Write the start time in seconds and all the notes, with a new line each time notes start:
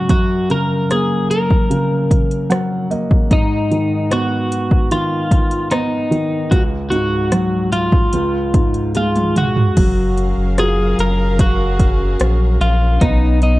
Already playing: G#2 C#3 F#3
0.09 F#2 F#4, kick, closed hi-hat
0.50 C#3 A#4, closed hi-hat
0.90 A#3 G#4, cross-stick, closed hi-hat
1.31 A#4, closed hi-hat
1.50 kick
1.70 C#3, closed hi-hat
2.11 kick, closed hi-hat
2.31 closed hi-hat
2.50 F#3 F#5, cross-stick, closed hi-hat
2.91 A#3 D#5, closed hi-hat
3.11 kick
3.31 G#2 D#4, kick, closed hi-hat
3.71 D#3, closed hi-hat
4.11 B3 F#4, cross-stick, closed hi-hat
4.52 closed hi-hat
4.71 kick
4.91 D#3 F4, closed hi-hat
5.31 kick, closed hi-hat
5.51 closed hi-hat
5.71 B3 D#4, cross-stick, closed hi-hat
6.11 D#3, closed hi-hat
6.51 C#2 F#4, kick, closed hi-hat
6.90 G#2 F#4, closed hi-hat
7.32 F#3, cross-stick, closed hi-hat
7.72 F4, closed hi-hat
7.92 kick
8.13 C#2, closed hi-hat
8.54 G#2, kick, closed hi-hat
8.74 closed hi-hat
8.95 G#3 F4, closed hi-hat, high tom
9.16 closed hi-hat, mid tom
9.36 F#4, closed hi-hat, mid tom
9.56 floor tom
9.77 F#1 F#3 C#4 G#4 A#4 F5, kick, closed hi-hat, crash
10.18 closed hi-hat
10.37 F#1
10.58 F4 F#4 G#4 A#4, cross-stick, closed hi-hat
10.98 F#1 A#4, closed hi-hat
11.39 F#4 A#4 F5, kick, closed hi-hat
11.79 kick, closed hi-hat
12.20 A#1, cross-stick, closed hi-hat
12.60 A#1 F4, closed hi-hat
13.00 B1 B3 D#4, kick, closed hi-hat
13.42 D#4, closed hi-hat